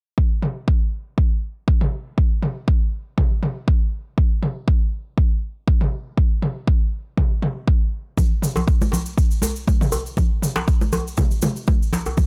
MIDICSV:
0, 0, Header, 1, 3, 480
1, 0, Start_track
1, 0, Tempo, 500000
1, 171, Time_signature, 4, 2, 24, 8
1, 11775, End_track
2, 0, Start_track
2, 0, Title_t, "Djembe"
2, 8214, Note_on_c, 9, 63, 81
2, 8310, Note_off_c, 9, 63, 0
2, 8561, Note_on_c, 9, 63, 77
2, 8657, Note_off_c, 9, 63, 0
2, 9051, Note_on_c, 9, 63, 76
2, 9147, Note_off_c, 9, 63, 0
2, 9524, Note_on_c, 9, 63, 76
2, 9620, Note_off_c, 9, 63, 0
2, 10135, Note_on_c, 9, 62, 89
2, 10141, Note_on_c, 9, 63, 81
2, 10231, Note_off_c, 9, 62, 0
2, 10237, Note_off_c, 9, 63, 0
2, 10490, Note_on_c, 9, 63, 86
2, 10586, Note_off_c, 9, 63, 0
2, 11455, Note_on_c, 9, 62, 65
2, 11551, Note_off_c, 9, 62, 0
2, 11580, Note_on_c, 9, 63, 71
2, 11676, Note_off_c, 9, 63, 0
2, 11775, End_track
3, 0, Start_track
3, 0, Title_t, "Drums"
3, 170, Note_on_c, 9, 36, 103
3, 266, Note_off_c, 9, 36, 0
3, 408, Note_on_c, 9, 47, 69
3, 504, Note_off_c, 9, 47, 0
3, 650, Note_on_c, 9, 36, 112
3, 746, Note_off_c, 9, 36, 0
3, 1130, Note_on_c, 9, 36, 113
3, 1226, Note_off_c, 9, 36, 0
3, 1610, Note_on_c, 9, 36, 106
3, 1706, Note_off_c, 9, 36, 0
3, 1740, Note_on_c, 9, 47, 78
3, 1836, Note_off_c, 9, 47, 0
3, 2090, Note_on_c, 9, 36, 108
3, 2186, Note_off_c, 9, 36, 0
3, 2328, Note_on_c, 9, 47, 73
3, 2424, Note_off_c, 9, 47, 0
3, 2570, Note_on_c, 9, 36, 122
3, 2666, Note_off_c, 9, 36, 0
3, 3049, Note_on_c, 9, 47, 67
3, 3050, Note_on_c, 9, 36, 114
3, 3145, Note_off_c, 9, 47, 0
3, 3146, Note_off_c, 9, 36, 0
3, 3289, Note_on_c, 9, 47, 82
3, 3385, Note_off_c, 9, 47, 0
3, 3530, Note_on_c, 9, 36, 113
3, 3626, Note_off_c, 9, 36, 0
3, 4010, Note_on_c, 9, 36, 114
3, 4106, Note_off_c, 9, 36, 0
3, 4249, Note_on_c, 9, 47, 73
3, 4345, Note_off_c, 9, 47, 0
3, 4489, Note_on_c, 9, 36, 121
3, 4585, Note_off_c, 9, 36, 0
3, 4969, Note_on_c, 9, 36, 118
3, 5065, Note_off_c, 9, 36, 0
3, 5448, Note_on_c, 9, 36, 118
3, 5544, Note_off_c, 9, 36, 0
3, 5578, Note_on_c, 9, 47, 84
3, 5674, Note_off_c, 9, 47, 0
3, 5928, Note_on_c, 9, 36, 111
3, 6024, Note_off_c, 9, 36, 0
3, 6168, Note_on_c, 9, 47, 74
3, 6264, Note_off_c, 9, 47, 0
3, 6408, Note_on_c, 9, 36, 126
3, 6504, Note_off_c, 9, 36, 0
3, 6888, Note_on_c, 9, 36, 116
3, 6888, Note_on_c, 9, 47, 71
3, 6984, Note_off_c, 9, 36, 0
3, 6984, Note_off_c, 9, 47, 0
3, 7128, Note_on_c, 9, 47, 87
3, 7224, Note_off_c, 9, 47, 0
3, 7368, Note_on_c, 9, 36, 118
3, 7464, Note_off_c, 9, 36, 0
3, 7848, Note_on_c, 9, 36, 104
3, 7848, Note_on_c, 9, 64, 104
3, 7854, Note_on_c, 9, 69, 50
3, 7944, Note_off_c, 9, 36, 0
3, 7944, Note_off_c, 9, 64, 0
3, 7950, Note_off_c, 9, 69, 0
3, 8087, Note_on_c, 9, 47, 78
3, 8098, Note_on_c, 9, 69, 82
3, 8183, Note_off_c, 9, 47, 0
3, 8194, Note_off_c, 9, 69, 0
3, 8221, Note_on_c, 9, 69, 38
3, 8225, Note_on_c, 9, 64, 78
3, 8317, Note_off_c, 9, 69, 0
3, 8321, Note_off_c, 9, 64, 0
3, 8329, Note_on_c, 9, 36, 117
3, 8330, Note_on_c, 9, 69, 45
3, 8425, Note_off_c, 9, 36, 0
3, 8426, Note_off_c, 9, 69, 0
3, 8461, Note_on_c, 9, 69, 34
3, 8463, Note_on_c, 9, 63, 93
3, 8557, Note_off_c, 9, 69, 0
3, 8559, Note_off_c, 9, 63, 0
3, 8575, Note_on_c, 9, 64, 88
3, 8578, Note_on_c, 9, 69, 79
3, 8671, Note_off_c, 9, 64, 0
3, 8674, Note_off_c, 9, 69, 0
3, 8694, Note_on_c, 9, 69, 35
3, 8790, Note_off_c, 9, 69, 0
3, 8809, Note_on_c, 9, 36, 107
3, 8811, Note_on_c, 9, 69, 52
3, 8905, Note_off_c, 9, 36, 0
3, 8907, Note_off_c, 9, 69, 0
3, 8938, Note_on_c, 9, 69, 33
3, 9034, Note_off_c, 9, 69, 0
3, 9041, Note_on_c, 9, 63, 103
3, 9049, Note_on_c, 9, 69, 95
3, 9137, Note_off_c, 9, 63, 0
3, 9145, Note_off_c, 9, 69, 0
3, 9177, Note_on_c, 9, 69, 36
3, 9273, Note_off_c, 9, 69, 0
3, 9288, Note_on_c, 9, 63, 96
3, 9289, Note_on_c, 9, 36, 112
3, 9293, Note_on_c, 9, 69, 50
3, 9384, Note_off_c, 9, 63, 0
3, 9385, Note_off_c, 9, 36, 0
3, 9389, Note_off_c, 9, 69, 0
3, 9419, Note_on_c, 9, 47, 93
3, 9419, Note_on_c, 9, 64, 74
3, 9428, Note_on_c, 9, 69, 36
3, 9515, Note_off_c, 9, 47, 0
3, 9515, Note_off_c, 9, 64, 0
3, 9523, Note_off_c, 9, 69, 0
3, 9523, Note_on_c, 9, 69, 87
3, 9619, Note_off_c, 9, 69, 0
3, 9658, Note_on_c, 9, 69, 39
3, 9754, Note_off_c, 9, 69, 0
3, 9763, Note_on_c, 9, 64, 100
3, 9769, Note_on_c, 9, 36, 100
3, 9771, Note_on_c, 9, 69, 49
3, 9859, Note_off_c, 9, 64, 0
3, 9865, Note_off_c, 9, 36, 0
3, 9867, Note_off_c, 9, 69, 0
3, 10007, Note_on_c, 9, 47, 78
3, 10015, Note_on_c, 9, 69, 82
3, 10103, Note_off_c, 9, 47, 0
3, 10111, Note_off_c, 9, 69, 0
3, 10140, Note_on_c, 9, 64, 69
3, 10141, Note_on_c, 9, 69, 33
3, 10236, Note_off_c, 9, 64, 0
3, 10237, Note_off_c, 9, 69, 0
3, 10250, Note_on_c, 9, 36, 114
3, 10250, Note_on_c, 9, 69, 46
3, 10346, Note_off_c, 9, 36, 0
3, 10346, Note_off_c, 9, 69, 0
3, 10380, Note_on_c, 9, 69, 34
3, 10381, Note_on_c, 9, 63, 89
3, 10476, Note_off_c, 9, 69, 0
3, 10477, Note_off_c, 9, 63, 0
3, 10487, Note_on_c, 9, 69, 86
3, 10489, Note_on_c, 9, 64, 86
3, 10583, Note_off_c, 9, 69, 0
3, 10585, Note_off_c, 9, 64, 0
3, 10632, Note_on_c, 9, 69, 37
3, 10724, Note_off_c, 9, 69, 0
3, 10724, Note_on_c, 9, 69, 48
3, 10728, Note_on_c, 9, 47, 80
3, 10730, Note_on_c, 9, 36, 106
3, 10730, Note_on_c, 9, 63, 103
3, 10820, Note_off_c, 9, 69, 0
3, 10824, Note_off_c, 9, 47, 0
3, 10826, Note_off_c, 9, 36, 0
3, 10826, Note_off_c, 9, 63, 0
3, 10858, Note_on_c, 9, 69, 33
3, 10954, Note_off_c, 9, 69, 0
3, 10962, Note_on_c, 9, 69, 91
3, 10969, Note_on_c, 9, 47, 92
3, 10971, Note_on_c, 9, 63, 104
3, 11058, Note_off_c, 9, 69, 0
3, 11065, Note_off_c, 9, 47, 0
3, 11067, Note_off_c, 9, 63, 0
3, 11098, Note_on_c, 9, 69, 39
3, 11194, Note_off_c, 9, 69, 0
3, 11204, Note_on_c, 9, 69, 48
3, 11210, Note_on_c, 9, 36, 108
3, 11213, Note_on_c, 9, 63, 99
3, 11300, Note_off_c, 9, 69, 0
3, 11306, Note_off_c, 9, 36, 0
3, 11309, Note_off_c, 9, 63, 0
3, 11353, Note_on_c, 9, 69, 32
3, 11449, Note_off_c, 9, 69, 0
3, 11449, Note_on_c, 9, 64, 101
3, 11456, Note_on_c, 9, 69, 80
3, 11545, Note_off_c, 9, 64, 0
3, 11552, Note_off_c, 9, 69, 0
3, 11577, Note_on_c, 9, 69, 37
3, 11673, Note_off_c, 9, 69, 0
3, 11686, Note_on_c, 9, 64, 97
3, 11688, Note_on_c, 9, 69, 47
3, 11690, Note_on_c, 9, 36, 104
3, 11775, Note_off_c, 9, 36, 0
3, 11775, Note_off_c, 9, 64, 0
3, 11775, Note_off_c, 9, 69, 0
3, 11775, End_track
0, 0, End_of_file